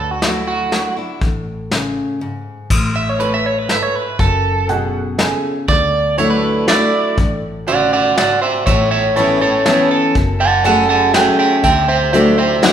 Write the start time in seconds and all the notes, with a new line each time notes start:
Already playing: D2 D3
0.00 A4
0.11 F#4
0.22 F#3 A3 D4 E4, snare, closed hi-hat
0.48 F#4
0.72 F#3 A3 D4 E4, snare, closed hi-hat
0.97 D4 E4
1.21 A1 A2, kick, closed hi-hat
1.71 C#3, snare, closed hi-hat
2.21 G#2
2.70 A1 A2, kick, crash
2.96 E5
3.09 C#5
3.19 A2 A4 B4 C#5, closed hi-hat
3.34 E5
3.46 C#5
3.59 B4
3.69 G#2 A4 B4 E5, snare, closed hi-hat
3.83 C#5
3.96 B4
4.19 F#1 F#2 A4, kick, closed hi-hat
4.68 B2 G#4 A4 F#5, closed hi-hat
5.18 C#3 G#4 A4 G#5, snare, closed hi-hat
5.68 D2 D3 D5, kick, closed hi-hat
6.18 F#3 A3 D4 E4 F#4 C#5 D5 E5, closed hi-hat
6.30 B4
6.67 F#3 A3 D4 E4 F#4 D5 E5, snare, closed hi-hat
7.18 A1 A2, kick, closed hi-hat
7.67 C#3 F#4 D5 E5 F#5, closed hi-hat
7.93 D5 F#5
8.16 G#2 F#4 D5 E5 F#5, snare, closed hi-hat
8.42 C5 E5
8.66 A1 A2 C#5 E5, kick, closed hi-hat
8.91 C#5 E5
9.16 E3 B3 C#4 E4 A4 B4 C#5, closed hi-hat
9.41 C#4 E4 A4 C#5
9.65 E3 B3 C#4 E4 A4 B4 C#5 E5, snare, closed hi-hat
9.91 A4
10.15 F#1 F#2, kick, closed hi-hat
10.40 F#5 A5
10.64 F#3 A3 C#4 G#4 A4 F#5 A5, closed hi-hat
10.89 F#5 A5
11.13 F#3 A3 C#4 G#4 A4 E5 F#5 G5, snare, closed hi-hat
11.39 E5 G5
11.64 D2 D3 E5 G5, kick, closed hi-hat
11.88 C5 E5
12.13 F#3 A3 D4 E4 F#4 C5 D5 E5, closed hi-hat
12.37 D4 E4 C5 E5
12.62 F#3 A3 D4 E4 F#4 D5 F#5, snare, closed hi-hat